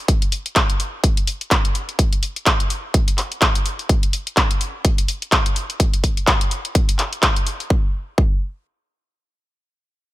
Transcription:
0.08 kick, closed hi-hat
0.22 closed hi-hat
0.32 open hi-hat
0.46 closed hi-hat
0.56 kick, clap, closed hi-hat
0.70 closed hi-hat
0.80 open hi-hat
1.04 kick, closed hi-hat
1.17 closed hi-hat
1.27 open hi-hat
1.41 closed hi-hat
1.51 kick, clap, closed hi-hat
1.65 closed hi-hat
1.75 open hi-hat
1.89 closed hi-hat
1.99 kick, closed hi-hat
2.13 closed hi-hat
2.23 open hi-hat
2.36 closed hi-hat
2.46 kick, clap, closed hi-hat
2.60 closed hi-hat
2.70 open hi-hat
2.94 kick, closed hi-hat
3.08 closed hi-hat
3.18 clap, open hi-hat
3.32 closed hi-hat
3.42 kick, clap, closed hi-hat
3.55 closed hi-hat
3.66 open hi-hat
3.79 open hi-hat
3.89 kick, closed hi-hat
4.03 closed hi-hat
4.13 open hi-hat
4.27 closed hi-hat
4.37 kick, clap, closed hi-hat
4.51 closed hi-hat
4.61 open hi-hat
4.85 kick, closed hi-hat
4.98 closed hi-hat
5.08 open hi-hat
5.22 closed hi-hat
5.32 kick, clap, closed hi-hat
5.46 closed hi-hat
5.56 open hi-hat
5.70 closed hi-hat
5.80 kick, closed hi-hat
5.94 closed hi-hat
6.04 kick, open hi-hat
6.17 closed hi-hat
6.27 kick, clap, closed hi-hat
6.41 closed hi-hat
6.51 open hi-hat
6.65 closed hi-hat
6.75 kick, closed hi-hat
6.89 closed hi-hat
6.99 clap, open hi-hat
7.13 closed hi-hat
7.23 kick, clap, closed hi-hat
7.36 closed hi-hat
7.47 open hi-hat
7.60 open hi-hat
7.70 kick
8.18 kick

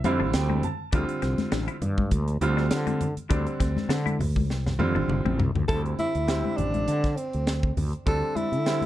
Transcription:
0.04 F2 D3 G3 C4 E4 F5, closed hi-hat, high conga
0.20 A1 D4
0.33 D2 G5, snare, closed hi-hat
0.49 C4, high conga
0.63 A5, closed hi-hat, low conga
0.92 D2 D3 G3 C4 D4 F4, kick, closed hi-hat
1.09 closed hi-hat
1.22 C2 C4, snare, closed hi-hat
1.38 snare, closed hi-hat, high conga
1.52 A1 D4, snare, closed hi-hat
1.68 E4, closed hi-hat
1.82 G2, closed hi-hat, low conga
1.98 kick, high conga
2.11 D2, kick, closed hi-hat
2.28 closed hi-hat
2.41 D2 D3 G3 C4 F4, closed hi-hat
2.57 D4, snare
2.71 D3, snare, closed hi-hat
2.87 C4, closed hi-hat, high conga
3.01 closed hi-hat, low conga
3.17 muted fretless electric bass stroke, closed hi-hat
3.29 D2 D3 G3 C4 D4, kick, closed hi-hat
3.47 closed hi-hat
3.60 D2 C4, kick, snare, closed hi-hat
3.77 snare, high conga
3.89 D3 D4, snare, closed hi-hat
4.06 E4, closed hi-hat, high conga
4.19 D2, open hi-hat, low conga
4.36 kick, high conga
4.49 C2, snare
4.66 snare, low conga
4.79 F2 D3 G3 C4 F4, high tom, high conga
4.95 A1 D4, high tom
5.08 G1, mid tom
5.25 A1 C4, mid tom, high conga
5.39 C2, floor tom, low conga
5.55 D2, floor tom
5.68 D2 D3 G3 C4 E4 A4, kick, closed hi-hat
5.86 closed hi-hat
5.99 E4, muted fretless electric bass stroke, closed hi-hat, high conga
6.15 D2, closed hi-hat
6.27 D3 G3 C4 G4, snare, closed hi-hat
6.45 high conga
6.57 A1 D4, closed hi-hat, low conga
6.74 closed hi-hat, high conga
6.88 D3, closed hi-hat
7.04 kick, snare, closed hi-hat
7.16 C4, closed hi-hat
7.33 D2, closed hi-hat
7.47 snare, closed hi-hat
7.63 kick
7.77 D2, open hi-hat, low conga
7.93 closed hi-hat
8.06 D2 D3 G3 C4 D4 A4, kick, closed hi-hat
8.36 E4, muted fretless electric bass stroke, closed hi-hat, high conga
8.52 D3, closed hi-hat
8.66 D3 G3 C4 E4, snare, closed hi-hat
8.81 closed hi-hat, high conga

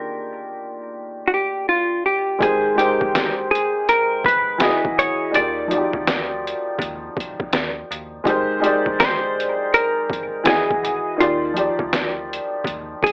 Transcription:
Already playing: D#3 A#3 D4 F4 G4 A#4
1.27 F#4
1.34 G4
1.69 F4
2.06 G4
2.39 G#1 G#3 D#4 G4, kick, closed hi-hat
2.43 G#4 A#4 C5
2.75 G#3 D#4 G4 G5, closed hi-hat
2.79 A#4 C5
3.01 G1, kick
3.15 snare, closed hi-hat
3.51 G#4
3.55 closed hi-hat
3.89 A#4, closed hi-hat
4.24 G#1 B4, kick, closed hi-hat
4.58 E1 E3 E4 F#4 G#4, snare, closed hi-hat
4.63 D#5
4.85 kick
4.98 G#1 C#5, closed hi-hat
5.31 D#2 D#3 D#4 F4, closed hi-hat
5.35 G4 D5
5.67 F3 D#4 F4 F#4, closed hi-hat
5.73 D5
5.78 G4
5.93 D2, kick
6.07 snare, closed hi-hat
6.47 closed hi-hat
6.79 D#2, kick, closed hi-hat
7.17 kick, closed hi-hat
7.40 kick
7.53 D#2, snare, closed hi-hat
7.91 D#2, closed hi-hat
8.24 G#1 G#3 D#4 G4, kick, closed hi-hat
8.28 A#4 C5
8.60 G#3 D#4 G4, closed hi-hat
8.64 A#4 D5
8.86 G1, kick
9.00 C5, snare, closed hi-hat
9.40 closed hi-hat
9.74 A#4, closed hi-hat
10.10 G#1, kick, closed hi-hat
10.44 E1 E3 E4 F#4 G#4, snare, closed hi-hat
10.48 G#4 D#5
10.70 kick
10.84 G#1, closed hi-hat
11.17 D#2 D#3 D#4 F4, closed hi-hat
11.21 G4 D5
11.53 F3 D#4 F4, closed hi-hat
11.57 G4 D5
11.79 D2, kick
11.93 snare, closed hi-hat
12.33 closed hi-hat
12.64 D#2, kick, closed hi-hat
13.03 G#4, kick, closed hi-hat

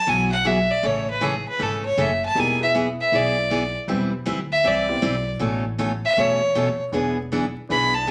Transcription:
Already playing: A5
0.07 B1 E3 F#3 B3 F#4 G#4 G#5
0.32 F#5
0.44 E3 F#3 B3 F#4 G#4 E5
0.71 D5
0.83 A1 C#3 E3 A3 C#4 A4 C#5
1.10 B4
1.21 C#3 E3 A3 C#4 G#4 A4
1.48 B4
1.59 G#1 C#3 E3 A3 C#4 A4
1.85 C#5
1.97 F#1 C#3 E3 A3 C#4 A4 E5
2.25 A5
2.35 E1 E3 G3 A#3 B3 D#4 E4 G4 G#4 A#4
2.39 G#5
2.60 G#3 B3 E4 G#4 B4 E5
2.74 E3 B3 E4 G#4
3.01 E5
3.12 B1 E3 B3 E4 G#4 D5
3.50 E3 B3 E4 G#4
3.87 E1 E3 G3 B3 C4 E4 G4 B4
4.25 D2 E3 G3 C4 E4 B4
4.52 E5
4.64 C2 E3 G3 C4 E4 B4
4.68 D5
4.88 B3 C4 E4 G4 D5
5.02 B1 E3 G3 C4 E4 B4
5.39 A1 B2 E3 A3 C#4 A4
5.78 B2 E3 A3 C#4 A4
6.05 E5
6.17 E2 B2 E3 A3 C#4 A4 C#5
6.55 B2 E3 A3 C#4 A4
6.92 E1 E3 B3 D4 E4 G#4 B4
7.32 E3 B3 D4 G#4
7.69 B1 E3 B3 D4 E4 G#4 B4 B5
7.94 A5
8.07 E3 B3

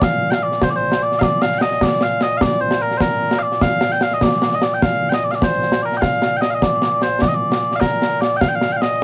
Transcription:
Already playing: A#2
0.02 F5, concert bass drum, snare
0.31 F5 G5, snare
0.43 D5
0.52 snare
0.62 C5, concert bass drum, snare
0.70 D5
0.76 C5
0.92 snare
1.02 D5
1.12 snare
1.19 D5 F5, concert bass drum, snare
1.42 F5, snare
1.52 snare
1.59 D#5 G5, snare
1.71 snare
1.81 D5, concert bass drum, snare
1.91 snare
2.01 F5, snare
2.21 D#5, snare
2.37 F5, concert bass drum, snare
2.42 D5
2.61 C5
2.71 snare
2.82 A#4
2.91 snare
2.97 C5, concert bass drum, snare
3.01 A#4
3.31 snare
3.39 D5 F5
3.52 snare
3.61 F5, concert bass drum, snare
3.81 snare
3.91 G5, snare
4.01 F5, snare
4.11 D#5, snare
4.21 D5, concert bass drum, snare
4.32 snare
4.42 snare
4.51 D#5, snare
4.62 D5, snare
4.74 G5
4.82 F5, concert bass drum, snare
5.09 G5, snare
5.14 D#5
5.24 D5
5.31 F5, snare
5.35 D5
5.42 C5, concert bass drum, snare
5.62 snare
5.72 snare
5.82 A#4 D5
5.92 snare
5.97 G5
6.01 F5, concert bass drum, snare
6.22 snare
6.37 G5
6.41 D#5, snare
6.50 F5
6.55 D#5
6.62 D5, concert bass drum, snare
6.82 snare
7.02 C5, snare
7.21 D5, concert bass drum, snare
7.28 D#5
7.34 D5
7.52 snare
7.72 snare
7.76 F5
7.80 A#4, concert bass drum, snare
8.02 snare
8.21 D5, snare
8.37 G5
8.41 F5, concert bass drum, snare
8.49 G5
8.55 F5
8.62 snare
8.73 G5
8.77 F5
8.82 D#5, snare

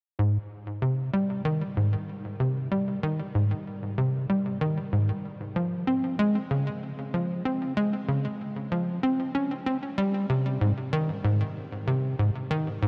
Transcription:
0.19 G#2
0.82 C3
1.13 G3
1.45 D#3
1.77 G#2
2.40 C3
2.71 G3
3.03 D#3
3.35 G#2
3.98 C3
4.29 G3
4.61 D#3
4.93 G#2
5.56 F3
5.87 C4
6.19 G#3
6.51 C#3
7.14 F3
7.45 C4
7.77 G#3
8.08 C#3
8.72 F3
9.03 C4
9.35 C#4
9.66 C4
9.98 G3
10.29 C3
10.61 G#2
10.93 D#3
11.24 G#2
11.87 C3
12.19 G#2
12.51 D#3
12.82 G#2

